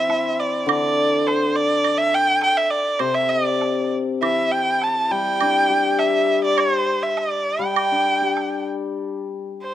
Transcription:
0.00 1.25 E3 medium
0.00 0.98 C4 soft
0.00 0.42 E5 medium
0.09 1.27 E4 soft
0.09 low woodblock soft
0.40 0.69 D5 medium
0.66 2.41 D3 medium
0.66 high woodblock medium
0.71 1.28 D5 loud
1.27 1.58 C5 medium
1.27 low woodblock soft
1.56 1.99 D5 loud
1.84 high woodblock medium
1.98 2.16 E5 loud
2.14 2.43 G5 loud
2.42 2.59 G5 loud
2.42 low woodblock soft
2.57 2.72 E5 medium
2.70 3.01 D5 medium
2.99 4.22 C3 medium
2.99 3.16 C5 medium
2.99 high woodblock soft
3.15 3.31 E5 loud
3.30 3.92 D5 medium
3.61 low woodblock soft
4.22 5.98 E3 medium
4.22 4.53 E5 medium
4.22 high woodblock medium
4.52 4.85 G5 medium
4.81 5.13 A5 medium
4.81 low woodblock soft
5.11 6.86 G3 medium
5.11 6.00 G5 loud
5.41 6.58 D4 medium
5.41 high woodblock medium
5.70 6.87 G4 medium
5.99 6.43 E5 loud
5.99 low woodblock soft
6.44 6.61 D5 loud
6.58 7.04 C5 loud
6.58 high woodblock medium
7.03 7.19 E5 medium
7.17 7.65 D5 medium
7.17 low woodblock soft
7.59 9.46 G3 medium
7.64 8.69 G5 medium
7.76 high woodblock medium
7.92 9.16 D4 soft
8.22 9.47 G4 soft
8.37 low woodblock soft
9.62 9.74 C5 medium

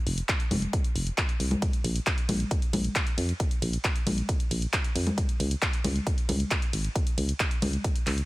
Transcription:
0.07 0.22 F1 loud
0.07 open hi-hat loud
0.18 closed hi-hat medium
0.29 kick loud
0.29 clap loud
0.29 closed hi-hat medium
0.40 closed hi-hat medium
0.51 0.66 F1 loud
0.51 open hi-hat loud
0.51 high conga medium
0.62 closed hi-hat soft
0.73 kick loud
0.73 closed hi-hat medium
0.84 closed hi-hat soft
0.96 1.11 F1 medium
0.96 open hi-hat loud
1.07 closed hi-hat medium
1.18 kick loud
1.18 clap loud
1.18 closed hi-hat medium
1.29 closed hi-hat medium
1.40 1.55 C2 medium
1.40 open hi-hat loud
1.51 closed hi-hat soft
1.51 high conga medium
1.62 kick loud
1.62 closed hi-hat medium
1.62 ride medium
1.73 closed hi-hat medium
1.84 2.00 A#1 loud
1.84 open hi-hat loud
1.84 ride medium
1.96 closed hi-hat medium
2.07 kick loud
2.07 clap loud
2.07 closed hi-hat medium
2.07 ride medium
2.18 closed hi-hat medium
2.29 2.44 A#1 loud
2.29 open hi-hat loud
2.29 ride medium
2.29 high conga medium
2.40 closed hi-hat medium
2.51 kick loud
2.51 closed hi-hat medium
2.51 ride medium
2.62 closed hi-hat medium
2.73 2.89 A#1 medium
2.73 open hi-hat loud
2.73 ride medium
2.73 high conga medium
2.84 closed hi-hat soft
2.95 kick loud
2.95 clap loud
2.95 closed hi-hat medium
2.95 ride medium
3.07 closed hi-hat medium
3.18 3.33 F2 medium
3.18 open hi-hat loud
3.18 ride medium
3.29 closed hi-hat medium
3.40 kick loud
3.40 closed hi-hat medium
3.40 ride medium
3.51 closed hi-hat medium
3.62 3.77 A#1 loud
3.62 open hi-hat loud
3.62 ride medium
3.73 closed hi-hat medium
3.84 kick loud
3.84 clap loud
3.84 closed hi-hat medium
3.84 ride medium
3.96 closed hi-hat medium
4.07 4.22 A#1 loud
4.07 open hi-hat loud
4.07 ride medium
4.07 high conga medium
4.18 closed hi-hat medium
4.29 kick loud
4.29 closed hi-hat medium
4.29 ride medium
4.40 closed hi-hat medium
4.51 4.66 A#1 medium
4.51 open hi-hat loud
4.51 ride medium
4.62 closed hi-hat medium
4.73 kick loud
4.73 clap loud
4.73 closed hi-hat medium
4.73 ride medium
4.84 closed hi-hat medium
4.95 5.11 F2 medium
4.95 open hi-hat loud
4.95 ride medium
5.07 closed hi-hat medium
5.07 high conga medium
5.18 kick loud
5.18 closed hi-hat medium
5.18 ride medium
5.29 closed hi-hat medium
5.40 5.55 C#2 loud
5.40 open hi-hat loud
5.40 ride medium
5.51 closed hi-hat medium
5.62 kick loud
5.62 clap loud
5.62 closed hi-hat medium
5.62 ride medium
5.73 closed hi-hat medium
5.84 6.00 C#2 loud
5.84 open hi-hat loud
5.84 ride medium
5.84 high conga medium
5.96 closed hi-hat medium
6.07 kick loud
6.07 closed hi-hat medium
6.07 ride medium
6.18 closed hi-hat medium
6.29 6.44 C#2 medium
6.29 open hi-hat loud
6.29 ride medium
6.29 high conga medium
6.40 closed hi-hat medium
6.51 kick loud
6.51 clap loud
6.51 closed hi-hat medium
6.51 ride medium
6.62 closed hi-hat medium
6.73 6.89 G#1 medium
6.73 open hi-hat loud
6.73 ride medium
6.84 closed hi-hat medium
6.95 kick loud
6.95 closed hi-hat medium
6.95 ride medium
7.07 closed hi-hat medium
7.18 7.33 C#2 loud
7.18 open hi-hat loud
7.18 ride medium
7.29 closed hi-hat medium
7.40 kick loud
7.40 clap loud
7.40 closed hi-hat medium
7.40 ride medium
7.51 closed hi-hat medium
7.62 7.77 C#2 loud
7.62 open hi-hat loud
7.62 ride medium
7.62 high conga medium
7.73 closed hi-hat medium
7.84 kick loud
7.84 closed hi-hat medium
7.84 ride medium
7.96 closed hi-hat medium
8.07 8.22 C#2 medium
8.07 clap medium
8.07 open hi-hat loud
8.07 ride medium
8.18 closed hi-hat medium

